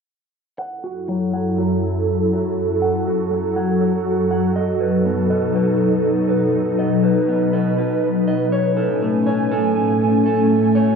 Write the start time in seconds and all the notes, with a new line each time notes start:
0.59 F#2 F#3 E4 A4 F#5
0.84 F#4
1.08 F#3
1.33 F#5
1.58 F#4
2.33 F#4
2.57 F#4
2.82 F#5
3.07 F#4
3.31 F#3
3.56 F#5
3.81 F#4
4.31 F#5
4.56 B2 D#4 A4 D#5
4.80 B4
5.05 B3
5.30 D#5
5.55 B4
6.29 B4
6.54 B4
6.79 D#5
7.04 B4
7.28 B3
7.53 D#5
7.78 B4
8.27 D#5
8.52 A2 A3 C#4 C#5 G#5
8.77 A4
9.02 A3
9.26 C#5
9.51 A4
10.26 A4
10.51 F#4
10.75 C#5